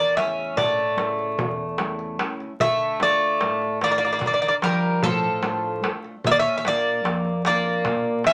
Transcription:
0.00 0.54 E2 medium
0.00 0.17 A#3 medium
0.00 0.15 D5 medium
0.17 0.82 C#3 soft
0.17 0.82 A3 soft
0.17 0.55 C#4 medium
0.17 0.82 E4 soft
0.17 0.55 E5 medium
0.17 darbuka tek medium
0.56 1.35 A2 medium
0.56 2.17 A3 medium
0.56 2.15 D5 medium
0.56 darbuka tek medium
0.56 darbuka dum medium
0.78 darbuka tek soft
0.96 1.62 C#3 soft
0.96 1.62 A3 soft
0.96 1.63 E4 medium
0.96 darbuka tek medium
1.19 darbuka tek soft
1.38 2.17 E2 medium
1.38 darbuka dum medium
1.78 2.44 C#3 soft
1.78 2.18 A3 soft
1.78 2.19 E4 medium
1.78 darbuka tek medium
1.99 darbuka tek soft
2.19 2.52 A3 medium
2.19 2.52 C#4 soft
2.19 2.52 E4 medium
2.19 darbuka tek medium
2.40 darbuka tek soft
2.60 3.38 D3 medium
2.60 2.98 A3 medium
2.60 2.98 E5 medium
2.60 darbuka dum medium
3.00 3.65 A3 medium
3.00 3.78 A3 medium
3.00 3.65 D4 soft
3.00 3.65 F4 medium
3.00 3.78 D5 medium
3.00 darbuka tek medium
3.41 4.20 A2 medium
3.41 darbuka tek medium
3.62 darbuka tek soft
3.81 4.46 A3 soft
3.81 3.89 A#3 medium
3.81 4.46 D4 soft
3.81 4.46 F4 medium
3.81 3.89 D5 medium
3.81 darbuka tek medium
3.91 3.96 A#3 medium
3.91 3.97 D5 medium
3.98 4.04 A#3 medium
3.98 4.03 D5 medium
3.98 darbuka tek soft
4.05 4.11 A#3 soft
4.05 4.10 D5 soft
4.12 4.18 A#3 medium
4.12 4.18 D5 medium
4.19 5.00 D3 medium
4.19 4.25 A#3 soft
4.19 4.25 D5 soft
4.19 darbuka tek medium
4.19 darbuka dum medium
4.26 4.32 A#3 soft
4.26 4.32 D5 medium
4.33 4.39 A#3 soft
4.33 4.39 D5 medium
4.42 4.47 A#3 medium
4.42 4.47 D5 medium
4.48 4.54 A#3 medium
4.48 4.54 D5 medium
4.62 5.27 F3 soft
4.62 5.01 G3 medium
4.62 5.27 D4 soft
4.62 5.27 F4 medium
4.62 5.03 A#4 medium
4.62 darbuka tek medium
5.03 5.81 A2 medium
5.03 5.90 F3 medium
5.03 5.90 A4 medium
5.03 darbuka dum medium
5.42 5.81 A3 medium
5.42 5.82 D4 soft
5.42 5.82 F4 medium
5.42 darbuka tek medium
5.82 6.15 A3 medium
5.82 6.15 D4 soft
5.82 6.15 F4 medium
5.82 darbuka tek medium
6.04 darbuka tek soft
6.24 7.02 A#2 medium
6.24 6.30 A#3 medium
6.24 6.31 E5 loud
6.24 darbuka dum medium
6.31 6.37 A#3 medium
6.31 6.37 D5 medium
6.39 6.56 C#4 medium
6.39 6.56 E5 loud
6.58 6.63 C#4 medium
6.58 6.64 E5 medium
6.65 7.29 A#3 medium
6.65 7.41 A#3 medium
6.65 7.29 D4 soft
6.65 7.29 F4 medium
6.65 7.46 D5 loud
6.65 darbuka tek medium
7.04 7.82 F2 medium
7.04 darbuka tek medium
7.25 darbuka tek soft
7.45 8.09 A#3 soft
7.45 8.22 A#3 medium
7.45 8.10 D4 soft
7.45 8.10 F4 medium
7.45 8.22 D5 medium
7.45 darbuka tek medium
7.64 darbuka tek soft
7.85 8.33 A#2 medium
7.85 darbuka tek medium
7.85 darbuka dum medium
8.24 8.33 D3 soft
8.24 8.33 A#3 medium
8.24 8.33 F4 medium
8.24 8.33 E5 loud
8.24 darbuka tek medium
8.28 8.33 C#4 medium

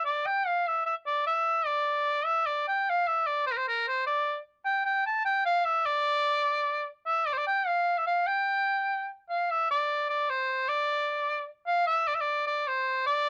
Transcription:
0.05 0.28 D5 medium
0.26 0.48 G5 medium
0.47 0.68 F5 medium
0.67 0.85 E5 medium
0.86 0.95 E5 medium
1.06 1.24 D5 medium
1.27 1.67 E5 loud
1.66 2.26 D5 loud
2.25 2.47 E5 loud
2.46 2.66 D5 medium
2.68 2.91 G5 medium
2.90 3.09 F5 loud
3.07 3.28 E5 medium
3.27 3.46 D5 medium
3.46 3.53 C5 loud
3.52 3.59 A#4 medium
3.57 3.66 C5 medium
3.68 3.86 A#4 medium
3.88 4.05 C5 medium
4.07 4.38 D5 medium
4.65 4.84 G5 loud
4.85 5.04 G5 medium
5.07 5.24 A5 loud
5.25 5.44 G5 loud
5.45 5.66 F5 medium
5.64 5.87 E5 loud
5.85 6.86 D5 loud
7.05 7.27 E5 loud
7.26 7.34 D5 medium
7.33 7.39 C5 medium
7.37 7.46 D5 medium
7.47 7.68 G5 loud
7.67 7.99 F5 medium
7.98 8.06 E5 medium
8.06 8.28 F5 loud
8.27 9.07 G5 loud
9.29 9.52 F5 medium
9.50 9.68 E5 loud
9.71 10.06 D5 medium
10.10 10.31 D5 medium
10.30 10.70 C5 medium
10.68 11.47 D5 loud
11.66 11.85 F5 loud
11.87 12.09 E5 loud
12.08 12.16 D5 medium
12.15 12.22 E5 medium
12.21 12.46 D5 medium
12.47 12.69 D5 medium
12.67 13.06 C5 loud
13.06 13.29 D5 loud

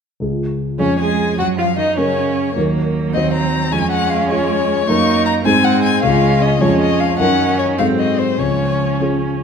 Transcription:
0.20 0.77 C#2 soft
0.20 0.76 G#3 soft
0.20 0.76 F4 soft
0.20 0.76 G#4 soft
0.78 1.37 F2 soft
0.78 0.86 C#3 soft
0.78 1.34 G#3 soft
0.78 0.98 C#4 medium
0.78 1.35 C#4 soft
0.78 1.35 G#4 soft
0.78 0.98 C#5 medium
0.98 1.37 G#3 medium
0.98 1.38 G#4 medium
0.98 1.38 G#5 medium
1.38 1.95 F#2 soft
1.38 1.59 F#3 medium
1.38 1.46 F#4 medium
1.38 1.47 F#5 medium
1.57 1.77 F3 medium
1.57 1.66 F4 medium
1.57 1.78 F5 medium
1.77 1.85 D#3 medium
1.77 1.99 D#4 medium
1.77 1.97 D#5 medium
1.97 2.54 C#3 soft
1.97 2.52 F#3 soft
1.97 2.55 C#4 medium
1.97 2.52 C#4 soft
1.97 2.52 A#4 soft
1.97 2.55 C#5 medium
2.55 3.12 D#2 soft
2.55 3.73 F#3 medium
2.55 3.10 F#3 soft
2.55 3.14 A#3 soft
2.55 3.11 D#4 soft
2.55 3.11 A#4 soft
3.13 3.71 D#2 medium
3.13 3.69 F#3 soft
3.13 3.74 C4 soft
3.13 3.69 F#4 soft
3.13 3.69 C5 soft
3.13 3.32 D#5 medium
3.34 3.74 A#5 medium
3.71 4.28 F2 medium
3.71 4.87 G#3 medium
3.71 4.87 C#4 medium
3.71 3.91 G#5 medium
3.91 4.11 F#5 medium
4.10 4.29 F5 medium
4.30 4.84 G#3 soft
4.30 4.85 F4 soft
4.30 4.89 C#5 medium
4.30 4.85 C#5 soft
4.87 5.44 F#2 medium
4.87 5.47 A#3 medium
4.87 5.42 A#3 soft
4.87 5.41 D#4 medium
4.87 5.42 D#4 soft
4.87 5.42 A#4 soft
4.87 5.25 C#6 medium
5.26 5.33 A#5 medium
5.45 6.02 G#2 medium
5.45 6.02 G#3 medium
5.45 6.04 C4 medium
5.45 5.99 C4 soft
5.45 6.00 D#4 soft
5.45 6.00 G#4 soft
5.45 5.66 G#5 medium
5.64 5.83 F#5 medium
5.83 6.03 G#5 medium
6.03 6.59 C#2 medium
6.03 6.60 G#3 medium
6.03 6.60 C#4 medium
6.03 6.57 C#4 soft
6.03 6.58 F4 soft
6.03 6.58 G#4 soft
6.03 6.43 F5 medium
6.42 6.62 D#5 medium
6.60 7.18 F2 medium
6.60 7.18 G#3 medium
6.60 7.18 C#4 medium
6.60 7.15 C#4 soft
6.60 7.16 F4 soft
6.60 7.16 G#4 soft
6.60 6.80 C#5 medium
6.81 7.02 D#5 medium
7.00 7.19 F5 medium
7.19 7.77 F#2 medium
7.19 7.81 D#3 medium
7.19 7.75 C#4 soft
7.19 7.80 C#4 medium
7.19 7.75 D#4 soft
7.19 7.76 A#4 soft
7.19 7.58 F#5 medium
7.59 7.67 C#5 medium
7.78 8.38 G#2 medium
7.78 8.42 F#3 medium
7.78 8.39 C4 medium
7.78 8.36 C4 soft
7.78 8.36 F#4 soft
7.78 8.36 A4 soft
7.78 7.86 F5 medium
7.99 8.20 D#5 medium
8.18 8.41 C5 medium
8.39 8.99 C#2 soft
8.39 9.42 F3 soft
8.39 9.40 C#4 soft
8.39 9.01 C#5 medium
9.01 9.43 C#4 soft
9.01 9.43 F4 soft
9.01 9.43 G#4 soft

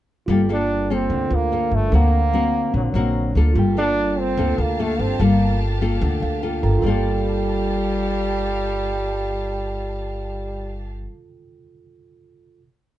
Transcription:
0.26 1.06 G1 medium
0.26 1.08 G3 medium
0.26 0.41 A#3 medium
0.26 1.27 F4 medium
0.26 0.41 F4 medium
0.26 1.29 A4 medium
0.26 0.41 A4 medium
0.32 1.30 G5 medium
0.49 0.87 A#3 medium
0.49 0.95 D4 loud
0.49 0.87 F4 medium
0.49 0.87 A4 medium
0.90 1.48 A#3 medium
0.90 1.36 C4 medium
0.90 1.48 F4 medium
0.90 1.49 A4 medium
1.10 1.29 D2 medium
1.10 1.90 D3 medium
1.30 1.69 D2 medium
1.30 1.92 F4 soft
1.30 1.92 A4 soft
1.30 1.90 A#4 soft
1.30 1.92 C5 soft
1.35 1.76 A#3 loud
1.52 1.78 A#3 medium
1.52 1.78 F4 soft
1.52 1.78 A4 medium
1.71 1.91 G1 medium
1.71 1.97 A3 medium
1.90 2.70 D2 medium
1.90 2.72 D3 medium
1.90 2.19 A#3 medium
1.90 2.19 C4 medium
1.90 3.51 D4 soft
1.90 3.52 A#4 soft
1.90 3.53 C5 soft
1.94 2.76 A#3 loud
1.94 2.19 F#4 medium
1.94 3.54 F#5 medium
2.33 2.91 A#3 medium
2.33 2.92 C4 medium
2.33 2.92 F#4 medium
2.74 2.93 A#1 medium
2.74 3.54 D3 medium
2.74 2.85 F#3 medium
2.84 2.91 F3 medium
2.90 3.36 F#3 medium
2.94 3.32 A#1 medium
2.94 3.32 A#3 medium
2.94 3.33 C4 medium
2.94 3.33 F#4 medium
3.35 3.54 D2 medium
3.35 3.74 A#3 medium
3.35 3.74 F4 medium
3.35 3.74 A4 medium
3.53 4.34 G1 medium
3.53 4.36 G3 medium
3.53 6.58 F4 medium
3.53 6.80 G4 medium
3.53 6.59 A4 medium
3.53 6.80 F5 medium
3.53 6.80 A5 medium
3.59 6.42 G5 medium
3.77 4.35 A#3 medium
3.77 4.21 D4 loud
3.77 4.35 F4 medium
3.77 4.35 A4 medium
4.19 4.62 C4 loud
4.37 4.57 D2 medium
4.37 5.18 D3 medium
4.37 4.64 A#3 medium
4.37 4.64 F4 medium
4.37 4.65 A4 medium
4.58 4.96 D2 medium
4.58 4.82 A#3 medium
4.79 5.02 A3 medium
4.79 5.05 A#3 medium
4.79 5.06 F4 medium
4.79 5.06 A4 medium
4.99 5.18 G1 medium
4.99 5.21 C4 medium
5.19 5.98 G1 medium
5.19 6.00 G3 medium
5.19 5.78 A#3 medium
5.19 5.59 A#3 medium
5.19 5.78 F4 medium
5.19 5.79 A4 medium
5.81 6.39 A#3 medium
5.81 6.40 F4 medium
5.81 6.40 A4 medium
6.01 6.21 D2 medium
6.01 6.82 D3 medium
6.22 6.60 D2 medium
6.22 6.41 F5 medium
6.42 6.82 A#3 soft
6.42 6.82 F4 medium
6.42 6.82 A4 medium
6.42 6.62 G5 soft
6.62 6.82 G1 medium
6.62 6.77 F4 soft
6.62 6.80 A4 soft
6.62 6.84 A#4 soft
6.62 6.85 G5 soft
6.62 6.82 A#5 medium
6.78 11.08 G3 medium
6.78 11.00 F4 medium
6.78 11.03 A4 medium
6.83 11.05 G1 medium
6.83 10.88 G3 medium
6.83 11.10 A#3 medium
6.83 11.12 F4 medium
6.83 10.87 G4 medium
6.83 10.87 F5 medium
6.83 10.87 A5 medium
6.88 11.13 A4 medium
6.88 11.12 G5 medium

